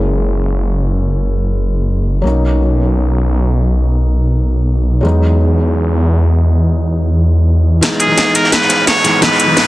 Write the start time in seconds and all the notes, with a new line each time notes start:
Already playing: F#1 G#3 A#3 C#4 E4
2.22 B1 F#3 A#3 C#4
2.27 D#4
5.01 E2 F#3 G#3 B3
5.06 D#4
7.81 E3 G#3 B3 D#4, snare, closed hi-hat, ride, riser
8.00 G#4, closed hi-hat, ride
8.06 E3 G#3 B3
8.12 D#4
8.18 snare, closed hi-hat, ride
8.35 A#4, closed hi-hat, ride
8.44 snare
8.52 B4, snare, closed hi-hat, ride
8.61 snare
8.69 snare, closed hi-hat, ride
8.87 C#5, snare, closed hi-hat, ride
9.03 E3 G#3 B3 D#4, snare, closed hi-hat, ride
9.21 E3 G#3 B3 D#4 B4, snare, closed hi-hat, ride
9.31 snare
9.40 closed hi-hat, ride
9.46 E3 G#3 B3
9.51 D#4
9.57 snare, closed hi-hat, open hi-hat